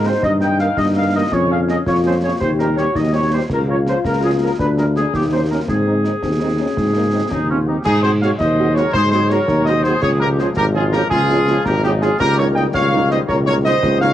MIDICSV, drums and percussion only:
0, 0, Header, 1, 2, 480
1, 0, Start_track
1, 0, Key_signature, -4, "major"
1, 0, Tempo, 362757
1, 300, Time_signature, 6, 3, 24, 8
1, 18702, End_track
2, 0, Start_track
2, 0, Title_t, "Drums"
2, 303, Note_on_c, 9, 35, 71
2, 303, Note_on_c, 9, 38, 62
2, 435, Note_off_c, 9, 35, 0
2, 435, Note_off_c, 9, 38, 0
2, 541, Note_on_c, 9, 38, 45
2, 673, Note_off_c, 9, 38, 0
2, 781, Note_on_c, 9, 38, 44
2, 914, Note_off_c, 9, 38, 0
2, 1022, Note_on_c, 9, 35, 66
2, 1022, Note_on_c, 9, 38, 59
2, 1155, Note_off_c, 9, 35, 0
2, 1155, Note_off_c, 9, 38, 0
2, 1750, Note_on_c, 9, 35, 70
2, 1750, Note_on_c, 9, 38, 63
2, 1882, Note_off_c, 9, 35, 0
2, 1882, Note_off_c, 9, 38, 0
2, 2233, Note_on_c, 9, 38, 48
2, 2365, Note_off_c, 9, 38, 0
2, 2469, Note_on_c, 9, 35, 67
2, 2469, Note_on_c, 9, 38, 53
2, 2601, Note_off_c, 9, 35, 0
2, 2601, Note_off_c, 9, 38, 0
2, 3194, Note_on_c, 9, 35, 67
2, 3194, Note_on_c, 9, 38, 62
2, 3327, Note_off_c, 9, 35, 0
2, 3327, Note_off_c, 9, 38, 0
2, 3431, Note_on_c, 9, 38, 45
2, 3564, Note_off_c, 9, 38, 0
2, 3674, Note_on_c, 9, 38, 43
2, 3806, Note_off_c, 9, 38, 0
2, 3909, Note_on_c, 9, 35, 67
2, 3909, Note_on_c, 9, 38, 57
2, 4041, Note_off_c, 9, 35, 0
2, 4041, Note_off_c, 9, 38, 0
2, 4627, Note_on_c, 9, 35, 66
2, 4627, Note_on_c, 9, 38, 58
2, 4627, Note_on_c, 9, 49, 26
2, 4759, Note_off_c, 9, 35, 0
2, 4759, Note_off_c, 9, 38, 0
2, 4759, Note_off_c, 9, 49, 0
2, 5114, Note_on_c, 9, 38, 46
2, 5246, Note_off_c, 9, 38, 0
2, 5352, Note_on_c, 9, 35, 61
2, 5352, Note_on_c, 9, 38, 55
2, 5484, Note_off_c, 9, 35, 0
2, 5484, Note_off_c, 9, 38, 0
2, 6077, Note_on_c, 9, 35, 65
2, 6077, Note_on_c, 9, 38, 62
2, 6209, Note_off_c, 9, 35, 0
2, 6209, Note_off_c, 9, 38, 0
2, 6321, Note_on_c, 9, 38, 44
2, 6453, Note_off_c, 9, 38, 0
2, 6562, Note_on_c, 9, 38, 45
2, 6694, Note_off_c, 9, 38, 0
2, 6799, Note_on_c, 9, 35, 65
2, 6799, Note_on_c, 9, 38, 53
2, 6931, Note_off_c, 9, 35, 0
2, 6931, Note_off_c, 9, 38, 0
2, 7520, Note_on_c, 9, 35, 70
2, 7520, Note_on_c, 9, 38, 53
2, 7652, Note_off_c, 9, 35, 0
2, 7652, Note_off_c, 9, 38, 0
2, 7997, Note_on_c, 9, 38, 42
2, 8129, Note_off_c, 9, 38, 0
2, 8237, Note_on_c, 9, 35, 58
2, 8237, Note_on_c, 9, 38, 50
2, 8369, Note_off_c, 9, 35, 0
2, 8369, Note_off_c, 9, 38, 0
2, 8960, Note_on_c, 9, 35, 63
2, 8960, Note_on_c, 9, 38, 49
2, 9093, Note_off_c, 9, 35, 0
2, 9093, Note_off_c, 9, 38, 0
2, 9679, Note_on_c, 9, 35, 65
2, 9679, Note_on_c, 9, 38, 62
2, 9811, Note_off_c, 9, 35, 0
2, 9811, Note_off_c, 9, 38, 0
2, 10395, Note_on_c, 9, 35, 81
2, 10395, Note_on_c, 9, 38, 74
2, 10395, Note_on_c, 9, 49, 54
2, 10527, Note_off_c, 9, 35, 0
2, 10527, Note_off_c, 9, 38, 0
2, 10527, Note_off_c, 9, 49, 0
2, 10880, Note_on_c, 9, 38, 53
2, 11012, Note_off_c, 9, 38, 0
2, 11120, Note_on_c, 9, 35, 77
2, 11120, Note_on_c, 9, 38, 71
2, 11252, Note_off_c, 9, 35, 0
2, 11252, Note_off_c, 9, 38, 0
2, 11597, Note_on_c, 9, 38, 55
2, 11729, Note_off_c, 9, 38, 0
2, 11828, Note_on_c, 9, 35, 83
2, 11828, Note_on_c, 9, 38, 68
2, 11961, Note_off_c, 9, 35, 0
2, 11961, Note_off_c, 9, 38, 0
2, 12070, Note_on_c, 9, 38, 54
2, 12202, Note_off_c, 9, 38, 0
2, 12308, Note_on_c, 9, 38, 53
2, 12440, Note_off_c, 9, 38, 0
2, 12549, Note_on_c, 9, 35, 75
2, 12549, Note_on_c, 9, 38, 80
2, 12681, Note_off_c, 9, 35, 0
2, 12681, Note_off_c, 9, 38, 0
2, 12785, Note_on_c, 9, 38, 54
2, 12917, Note_off_c, 9, 38, 0
2, 13022, Note_on_c, 9, 38, 56
2, 13154, Note_off_c, 9, 38, 0
2, 13267, Note_on_c, 9, 35, 87
2, 13267, Note_on_c, 9, 38, 73
2, 13267, Note_on_c, 9, 49, 32
2, 13399, Note_off_c, 9, 35, 0
2, 13399, Note_off_c, 9, 38, 0
2, 13399, Note_off_c, 9, 49, 0
2, 13747, Note_on_c, 9, 38, 51
2, 13879, Note_off_c, 9, 38, 0
2, 13985, Note_on_c, 9, 35, 74
2, 13985, Note_on_c, 9, 38, 74
2, 14117, Note_off_c, 9, 35, 0
2, 14117, Note_off_c, 9, 38, 0
2, 14462, Note_on_c, 9, 38, 56
2, 14595, Note_off_c, 9, 38, 0
2, 14702, Note_on_c, 9, 35, 79
2, 14702, Note_on_c, 9, 38, 76
2, 14834, Note_off_c, 9, 35, 0
2, 14834, Note_off_c, 9, 38, 0
2, 14948, Note_on_c, 9, 38, 59
2, 15081, Note_off_c, 9, 38, 0
2, 15186, Note_on_c, 9, 38, 57
2, 15318, Note_off_c, 9, 38, 0
2, 15426, Note_on_c, 9, 35, 74
2, 15426, Note_on_c, 9, 38, 84
2, 15558, Note_off_c, 9, 35, 0
2, 15558, Note_off_c, 9, 38, 0
2, 15660, Note_on_c, 9, 38, 54
2, 15793, Note_off_c, 9, 38, 0
2, 15905, Note_on_c, 9, 38, 57
2, 16037, Note_off_c, 9, 38, 0
2, 16145, Note_on_c, 9, 35, 88
2, 16145, Note_on_c, 9, 38, 70
2, 16145, Note_on_c, 9, 49, 35
2, 16278, Note_off_c, 9, 35, 0
2, 16278, Note_off_c, 9, 38, 0
2, 16278, Note_off_c, 9, 49, 0
2, 16624, Note_on_c, 9, 38, 56
2, 16756, Note_off_c, 9, 38, 0
2, 16862, Note_on_c, 9, 35, 87
2, 16862, Note_on_c, 9, 38, 86
2, 16994, Note_off_c, 9, 35, 0
2, 16994, Note_off_c, 9, 38, 0
2, 17342, Note_on_c, 9, 38, 57
2, 17475, Note_off_c, 9, 38, 0
2, 17581, Note_on_c, 9, 35, 90
2, 17581, Note_on_c, 9, 38, 78
2, 17714, Note_off_c, 9, 35, 0
2, 17714, Note_off_c, 9, 38, 0
2, 17824, Note_on_c, 9, 38, 55
2, 17956, Note_off_c, 9, 38, 0
2, 18064, Note_on_c, 9, 38, 56
2, 18196, Note_off_c, 9, 38, 0
2, 18301, Note_on_c, 9, 35, 90
2, 18301, Note_on_c, 9, 38, 79
2, 18433, Note_off_c, 9, 35, 0
2, 18433, Note_off_c, 9, 38, 0
2, 18544, Note_on_c, 9, 38, 60
2, 18677, Note_off_c, 9, 38, 0
2, 18702, End_track
0, 0, End_of_file